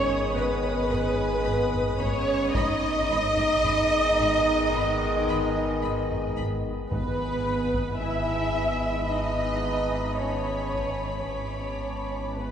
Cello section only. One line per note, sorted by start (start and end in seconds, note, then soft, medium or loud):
0.00 0.36 C#4 medium
0.37 2.00 B3 medium
2.00 2.54 C#4 medium
2.54 6.36 D#4 medium
6.91 7.96 B3 medium
8.01 9.10 E4 medium
9.10 10.16 D#4 medium
10.19 11.27 C#4 soft
11.28 12.35 C#4 soft
12.37 12.51 B3 soft